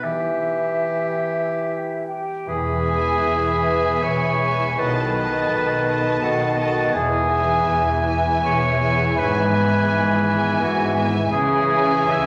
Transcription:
0.00 2.11 E3 soft
0.00 2.46 E3 soft
0.00 0.29 B3 soft
0.00 2.04 E4 soft
0.00 2.15 G4 soft
0.00 1.11 B4 soft
0.00 2.03 E5 soft
0.31 2.71 B3 soft
0.57 2.95 E4 soft
0.85 2.20 G4 soft
1.12 1.92 B4 soft
1.39 4.82 E5 soft
1.66 2.50 G5 soft
1.93 3.47 B4 soft
2.07 2.50 G4 soft
2.07 2.49 G5 soft
2.21 2.50 G4 soft
2.46 3.13 E1 soft
2.46 3.13 E2 soft
2.46 4.75 E3 soft
2.46 4.82 E3 soft
2.46 4.05 G#4 medium
2.46 4.75 B4 soft
2.46 4.03 G#5 medium
2.46 4.76 B5 soft
2.72 5.27 B3 soft
2.84 3.61 B3 soft
2.84 3.60 E5 soft
2.84 3.61 G#5 soft
2.97 4.54 E4 soft
3.22 3.94 E1 soft
3.22 3.94 E2 soft
3.22 3.75 G#4 soft
3.48 4.03 B4 soft
3.62 4.40 B3 soft
3.62 4.40 E5 soft
3.62 4.41 G#5 soft
3.76 4.29 G#4 soft
4.03 4.70 E1 soft
4.03 4.70 E2 soft
4.03 7.94 B4 soft
4.03 4.80 C#5 medium
4.03 4.80 C#6 medium
4.30 4.82 G#4 soft
4.42 4.77 B3 soft
4.42 4.79 E5 soft
4.42 4.79 G#5 soft
4.56 4.83 E4 soft
4.78 5.43 B1 soft
4.78 5.43 B2 medium
4.78 6.98 B2 soft
4.78 6.90 D#3 medium
4.78 6.20 D#3 soft
4.78 5.14 B3 soft
4.78 6.94 A4 soft
4.78 6.22 B4 medium
4.78 5.13 D#5 soft
4.78 6.20 A5 soft
4.78 5.16 A5 soft
4.78 6.21 B5 medium
5.04 6.97 F#3 soft
5.14 5.85 B3 soft
5.14 5.85 D#5 soft
5.14 5.86 A5 soft
5.28 6.69 B3 soft
5.51 6.14 B1 soft
5.51 6.14 B2 soft
5.51 5.97 D#4 soft
5.75 6.21 A4 soft
5.86 6.56 B3 soft
5.86 6.55 D#5 soft
5.86 6.57 A5 soft
5.98 6.45 D#4 soft
6.21 6.86 B1 soft
6.21 6.86 B2 soft
6.21 6.96 D#3 soft
6.21 6.58 F#4 medium
6.21 6.97 A4 soft
6.21 6.56 F#5 soft
6.21 6.94 A5 soft
6.47 6.97 D#4 soft
6.57 6.93 B3 soft
6.57 6.96 F#4 medium
6.57 6.93 D#5 soft
6.57 6.95 F#5 soft
6.57 6.94 A5 soft
6.70 7.39 B3 soft
6.93 7.57 E1 medium
6.93 9.20 E2 soft
6.93 7.57 E2 medium
6.93 11.14 E3 medium
6.93 8.91 E3 soft
6.93 11.14 G#4 medium
6.93 8.16 G#4 medium
6.93 8.91 G#5 medium
6.93 8.16 G#5 medium
7.17 9.20 B2 soft
7.28 8.02 B3 soft
7.28 8.02 E5 soft
7.28 8.02 G#5 soft
7.41 8.93 B3 soft
7.65 8.35 E1 medium
7.65 8.35 E2 medium
7.65 8.17 E4 soft
7.91 8.43 G#4 soft
8.03 8.79 B3 soft
8.03 8.79 E5 soft
8.03 8.79 G#5 soft
8.19 8.69 E4 soft
8.43 9.09 E1 medium
8.43 9.08 E2 medium
8.43 10.12 G#4 soft
8.43 9.20 C#5 medium
8.43 9.17 C#6 medium
8.70 9.87 E4 soft
8.81 9.16 B3 soft
8.81 9.16 E5 soft
8.81 9.15 G#5 soft
8.94 9.64 B3 soft
9.15 9.80 G#1 medium
9.15 9.81 G#2 medium
9.15 11.35 G#2 soft
9.15 11.27 E3 medium
9.15 9.51 B3 soft
9.15 10.65 B4 medium
9.15 9.52 E5 soft
9.15 11.27 G#5 medium
9.15 9.50 G#5 soft
9.15 10.60 B5 medium
9.41 11.56 G#3 soft
9.51 10.24 B3 soft
9.51 10.24 E5 soft
9.51 10.23 G#5 soft
9.65 11.06 B3 soft
9.89 10.53 G#1 medium
9.89 10.53 G#2 medium
9.89 10.36 E4 soft
10.13 10.59 G#4 soft
10.25 10.95 B3 soft
10.25 10.94 E5 soft
10.25 10.95 G#5 soft
10.37 10.83 E4 soft
10.60 11.23 G#1 medium
10.60 11.24 G#2 medium
10.60 10.97 F#4 medium
10.60 12.26 G#4 soft
10.60 10.95 F#5 soft
10.84 12.09 E4 soft
10.95 11.31 B3 soft
10.95 11.31 E5 soft
10.95 11.32 G#5 soft
11.07 11.35 B3 soft
11.31 12.00 C#2 medium
11.31 12.26 C#3 medium
11.31 12.01 C#3 medium
11.31 12.26 E3 medium
11.31 12.13 G#4 medium
11.31 12.26 G#4 medium
11.31 12.11 G#5 medium
11.31 12.26 G#5 medium
11.57 12.26 G#3 soft
11.70 12.26 C#4 medium
11.70 12.26 E5 soft
11.70 12.26 G#5 soft
11.84 12.26 C#4 soft
12.10 12.26 C#2 medium
12.10 12.26 C#3 medium
12.10 12.26 E4 soft
12.10 12.26 E5 medium
12.10 12.26 E6 medium

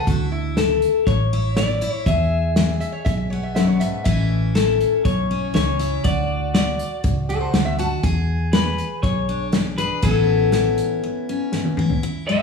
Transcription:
0.07 0.85 D2 medium
0.07 0.52 D3 medium
0.07 1.33 E4 medium
0.07 0.31 F#4 medium
0.07 kick loud
0.07 closed hi-hat medium
0.32 0.56 E4 medium
0.57 1.02 A3 medium
0.57 1.08 A4 medium
0.57 snare loud
0.57 closed hi-hat medium
0.82 closed hi-hat medium
1.07 1.84 A1 medium
1.07 1.52 A2 medium
1.07 1.57 C#5 medium
1.07 kick loud
1.07 closed hi-hat medium
1.33 1.81 E4 medium
1.56 2.01 A3 medium
1.56 1.91 D5 medium
1.56 snare loud
1.56 closed hi-hat medium
1.81 2.08 E4 medium
1.81 closed hi-hat medium
1.91 2.03 C#5 medium
2.06 2.83 E2 medium
2.06 2.51 E2 medium
2.06 4.03 G#4 medium
2.06 2.77 E5 medium
2.06 kick loud
2.06 closed hi-hat medium
2.56 3.01 E3 medium
2.56 snare loud
2.56 closed hi-hat medium
2.80 2.93 E5 medium
2.80 closed hi-hat medium
2.92 3.05 C#5 medium
3.05 3.83 B1 medium
3.05 3.51 B2 medium
3.05 3.16 E5 medium
3.05 kick loud
3.05 closed hi-hat medium
3.17 3.30 E5 medium
3.30 4.06 B3 medium
3.30 3.42 C#5 medium
3.43 3.54 E5 medium
3.55 3.80 F#2 medium
3.55 3.67 E5 medium
3.55 snare loud
3.55 closed hi-hat medium
3.67 3.80 C#5 medium
3.80 4.06 G#2 medium
3.80 4.03 E5 medium
3.80 closed hi-hat medium
4.04 4.83 A1 medium
4.04 4.50 A2 medium
4.04 4.54 E3 medium
4.04 6.02 A3 medium
4.04 5.29 C#4 medium
4.04 5.78 E4 medium
4.04 4.41 E5 medium
4.04 kick loud
4.04 closed hi-hat medium
4.55 5.00 E3 medium
4.55 5.02 A4 medium
4.55 snare medium
4.55 closed hi-hat medium
4.80 closed hi-hat medium
5.05 5.48 B1 medium
5.05 5.50 E2 medium
5.05 5.51 C#5 medium
5.05 kick loud
5.05 closed hi-hat medium
5.31 6.02 C#4 medium
5.54 5.97 C#2 medium
5.54 5.99 E3 medium
5.54 6.01 C#5 medium
5.54 snare loud
5.54 closed hi-hat medium
5.79 6.04 E4 medium
5.79 closed hi-hat medium
6.04 6.82 D2 medium
6.04 6.49 D3 medium
6.04 7.29 F#4 medium
6.04 6.53 D5 medium
6.04 kick loud
6.04 closed hi-hat medium
6.54 6.99 A3 medium
6.54 7.75 D5 medium
6.54 snare loud
6.54 closed hi-hat medium
6.79 closed hi-hat medium
7.04 7.47 C#2 medium
7.04 7.49 A2 medium
7.04 kick loud
7.04 closed hi-hat medium
7.29 7.78 F#4 medium
7.29 7.40 A4 medium
7.41 7.65 C5 medium
7.54 7.96 D2 medium
7.54 7.99 A3 medium
7.54 snare loud
7.54 closed hi-hat medium
7.65 7.78 E5 medium
7.79 8.01 F#4 medium
7.79 8.03 A5 medium
7.79 closed hi-hat medium
8.03 8.49 E2 medium
8.03 8.81 E2 medium
8.03 9.77 G#4 medium
8.03 8.40 G#5 medium
8.03 kick loud
8.03 closed hi-hat medium
8.53 8.98 E3 medium
8.53 9.02 B4 medium
8.53 snare loud
8.53 closed hi-hat medium
8.78 closed hi-hat medium
9.03 9.80 B1 medium
9.03 9.48 B2 medium
9.03 9.49 C#5 loud
9.03 kick loud
9.03 closed hi-hat medium
9.29 10.00 D4 medium
9.52 9.98 E3 medium
9.52 snare loud
9.52 closed hi-hat medium
9.78 10.00 G#4 medium
9.78 10.03 B4 loud
9.78 closed hi-hat medium
10.02 10.80 A1 medium
10.02 10.47 A2 medium
10.02 10.52 E3 medium
10.02 12.00 B3 medium
10.02 11.28 C#4 medium
10.02 11.78 E4 medium
10.02 11.48 A4 medium
10.02 kick loud
10.02 closed hi-hat medium
10.52 10.98 E3 medium
10.52 snare loud
10.52 closed hi-hat medium
10.78 closed hi-hat medium
11.04 11.48 E2 medium
11.29 12.00 C#4 medium
11.52 11.97 E3 medium
11.52 snare medium
11.65 high tom medium
11.77 12.42 E4 medium
11.77 mid tom medium
11.90 floor tom medium
12.03 12.42 E2 medium
12.27 12.42 G#3 medium
12.27 12.42 C#5 medium
12.27 12.42 E5 loud

